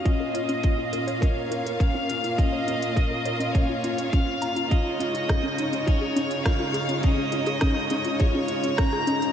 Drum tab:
HH |x-xxx-xxx-xxx-xx|x-xxx-xxx-xxx-xx|x-xxx-xxx-xxx-xx|x-xxx-xxx-xxx-xx|
SD |----------------|----------------|----r-------r---|----r-------r---|
T2 |----------------|----------------|-o--o--o--o--o--|o--o--o--o--o--o|
BD |o---o---o---o---|o---o---o---o---|o---o---o---o---|o---o---o---o---|